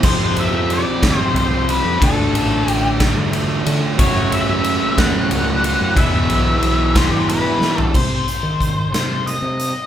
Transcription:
0.03 overdriven electric guitar F2 C3, fingered electric bass F2, distorted electric guitar F3 G#3 C4 F4, lead electric guitar C5, kick, crash
0.36 lead electric guitar E5, ride
0.53 fingered electric bass F2
0.70 lead electric guitar D5, ride
1.03 fingered electric bass D2, kick, snare, ride
1.18 lead electric guitar C5
1.34 fingered electric bass C2, lead electric guitar C5, ride
1.69 lead electric guitar B4, ride
1.85 fingered electric bass F2
2.00 fingered electric bass D2, distorted electric guitar D3 A3 D4 F4, lead electric guitar A4, kick, ride
2.34 fingered electric bass A1, ride
2.67 fingered electric bass A1, lead electric guitar G4, ride
3.00 kick, snare, ride
3.17 fingered electric bass D3
3.33 ride
3.66 fingered electric bass D3, ride
3.98 overdriven electric guitar F#2 C#3, fingered electric bass F#2, distorted electric guitar F#3 A3 C#4 F#4, lead electric guitar C#5, kick, ride
4.32 lead electric guitar E5, ride
4.49 fingered electric bass F#2
4.64 ride
4.98 fingered electric bass D#2, lead electric guitar F#5, kick, snare, ride
5.31 fingered electric bass C#2, ride
5.64 ride
5.81 fingered electric bass F#2
5.95 overdriven electric guitar E2 B2, fingered electric bass E2, distorted electric guitar E3 G#3 B3, lead electric guitar E5, kick, ride
5.99 distorted electric guitar E4
6.30 fingered electric bass B1, ride
6.62 fingered electric bass B1, ride
6.95 lead electric guitar C5, kick, snare, ride
7.11 fingered electric bass E3
7.29 lead electric guitar B4, ride
7.61 fingered electric bass E3, snare
7.78 lead electric guitar A4, floor tom
7.94 fingered electric bass C3, lead electric guitar C5, kick, crash
8.28 closed hi-hat
8.43 fingered electric bass D#3
8.60 kick, closed hi-hat
8.92 fingered electric bass C3, lead electric guitar C5, snare, closed hi-hat
9.26 lead electric guitar D#5, closed hi-hat
9.42 fingered electric bass C3
9.59 closed hi-hat

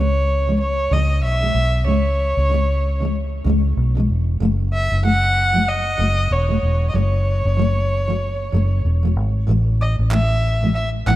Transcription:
Already playing: fingered electric bass C#2, steel-string acoustic guitar C#3, violin C#5
0.00 steel-string acoustic guitar G#3
0.47 steel-string acoustic guitar C#3 G#3
0.60 violin C#5
0.91 fingered electric bass C#2, steel-string acoustic guitar C#3 G#3, violin D#5
1.23 fingered electric bass B1, violin E5
1.41 steel-string acoustic guitar C#3 G#3
1.55 fingered electric bass B1
1.86 fingered electric bass C#2, steel-string acoustic guitar C#3 G#3, violin C#5
2.37 fingered electric bass C#2
2.49 steel-string acoustic guitar C#3 G#3
3.00 steel-string acoustic guitar C#3 G#3
3.44 fingered electric bass C#2, steel-string acoustic guitar C#3 G#3
3.77 fingered electric bass B1
3.95 steel-string acoustic guitar C#3 G#3
4.09 fingered electric bass E1
4.40 fingered electric bass F#1, steel-string acoustic guitar F#3 A3
4.73 violin E5
4.92 fingered electric bass F#1
5.03 steel-string acoustic guitar F#3 A3, violin F#5
5.53 steel-string acoustic guitar F#3 A3
5.68 violin D#5
5.98 fingered electric bass F#1, steel-string acoustic guitar F#3 A3
6.31 fingered electric bass E1, violin C#5
6.49 steel-string acoustic guitar F#3 A3
6.63 fingered electric bass E1
6.89 steel-string acoustic guitar F#3, violin D#5
6.94 fingered electric bass F#1, steel-string acoustic guitar A3, violin C#5
7.45 fingered electric bass F#1
7.57 steel-string acoustic guitar F#3 A3
8.08 steel-string acoustic guitar F#3 A3
8.52 fingered electric bass F#1, steel-string acoustic guitar F#3 A3
8.85 fingered electric bass E1
9.03 steel-string acoustic guitar F#3 A3
9.16 fingered electric bass G#1
9.47 fingered electric bass A1, steel-string acoustic guitar A2 E3 A3
9.81 violin D#5
9.99 fingered electric bass A1
10.11 steel-string acoustic guitar A2 E3 A3, violin E5, clap
10.61 steel-string acoustic guitar A2 E3 A3
10.75 violin E5
11.06 fingered electric bass A1, steel-string acoustic guitar A2 E3 A3, violin F#5, clap

